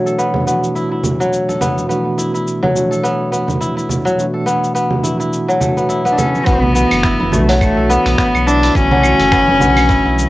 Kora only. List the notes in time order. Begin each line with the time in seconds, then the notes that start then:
Already playing: F#3 B3 E4
0.06 A4
0.18 B3
0.47 B3
0.75 E4
0.92 E4
1.20 F#3
1.49 A4
1.61 B3
1.89 B3
2.18 E4
2.34 E4
2.63 F#3
2.91 A4
3.03 B3
3.32 B3
3.61 E4
3.77 E4
4.05 F#3
4.34 A4
4.46 B3
4.75 B3
5.03 E4
5.20 E4
5.48 F#3
5.60 A3
5.77 B3
5.89 E4
6.05 B3
6.18 A4
6.46 B3
6.75 B3
7.04 E4
7.20 E4
7.48 F#3
7.77 A4
7.89 B3
8.18 B3
8.47 E4
8.63 E4
8.91 F#3
9.20 A4
9.32 B3
9.61 B3
9.89 E4
10.06 E4